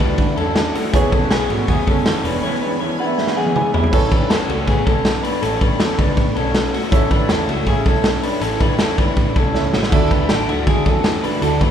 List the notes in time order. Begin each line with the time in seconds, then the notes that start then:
Already playing: D3 A3 D4 E4 F#4 A4
0.00 D2 A3 D4 F#4 B4, kick
0.18 D3 E3 A3 D4 F#4, kick, ride
0.37 E2 A3 C#4 D4 F#4 A4, ride
0.56 E3 A3 D4 F#4, snare, ride
0.74 A3 D4 F#4, open hi-hat, ride
0.93 E1 E3 B3 C#4 E4 G#4 B4 C#5 G#5, kick, hi-hat pedal, ride
1.11 E1 B3 C#4 G#4 A4, kick, ride
1.30 B1 E3 B3 C#4 G#4, snare, ride
1.50 G#1 A3 B3 C#4 F#4 G#4, ride
1.68 E2 E3 B3 C#4 G#4, kick, ride
1.87 F#1 B3 C#4 G#4 A4, kick, ride
2.06 E3 B3 C#4 G#4, snare, ride
2.24 E1 B3 C#4 D4 G#4 B4, open hi-hat, ride
2.43 E3 B3 C#4 E4 G#4 C#5
2.62 B3 C#4 D4 G#4 B4
2.80 E3 B3 C#4 E4 G#4 C#5
2.99 B3 C#4 D4 G#4 B4 F#5
3.06 E5
3.18 E3 B3 C#4 G#4 E5, snare
3.27 snare
3.36 B3 C#4 G#4 F#5
3.46 high tom
3.55 E3 B3 C#4 G#4 G#5, mid tom
3.74 G#3 B3 C#4 E4 G#4 B5, floor tom
3.84 floor tom
3.92 A1 A3 B3 C#4 E4 A4 B4 C#5, kick, crash
4.11 A1 D4 B4, kick, ride
4.30 E2 C#4 A4, snare, ride
4.49 C#2 A3 F#4, ride
4.67 A2 B3 G#4, kick, ride
4.86 B1 C#4 A4, kick, ride
5.05 snare, ride
5.23 D4 B4, open hi-hat, ride
5.42 A1 C#4 A4, hi-hat pedal, ride
5.61 A1 D4 B4, kick, ride
5.80 E2 C#4 A4, snare, ride
5.98 C#2 D4 B4, kick, ride
6.17 A2, kick, ride
6.36 B1 C#4 A4, ride
6.54 snare, ride
6.74 A3 F#4, open hi-hat, ride
6.91 A1 C#4 E4 A4 C#5 E5, kick, hi-hat pedal, ride
7.11 A1 D4 B4, kick, ride
7.29 E2 C#4 A4, snare, ride
7.48 C#2 A3 F#4, ride
7.66 A2 C#4 G#4, kick, ride
7.85 B1 C#4 A4, kick, ride
8.04 snare, ride
8.23 D4 B4, open hi-hat, ride
8.41 A1 C#4 A4, hi-hat pedal, ride
8.60 A1 D4 B4, kick, ride
8.79 E2 C#4 A4, snare, ride
8.98 C#2 D4 B4, kick, ride
9.17 A2, kick, ride
9.36 B1 C#4 A4, kick, ride
9.54 C#2 E4 A4 C#5 E5, snare
9.73 A1 A3 F#4, snare
9.83 snare
9.91 D2 D3 E3 A3 D4 E4 F#4 A4 E5, kick, crash
10.10 D2 A3 D4 F#4 B4, kick, ride
10.29 A1 E3 A3 D4 F#4 A4, snare, ride
10.48 D2 A3 D4 F#4, ride
10.67 D3 E3 A3 D4 F#4 G#4, kick, ride
10.85 E2 A3 C#4 D4 F#4 A4, kick, ride
11.04 E3 A3 D4 F#4, snare, ride
11.24 A3 D4 F#4 B4, open hi-hat, ride
11.42 D2 D3 E3 A3 D4 F#4 A4, hi-hat pedal, ride
11.60 D2 A3 D4 F#4 B4, kick, ride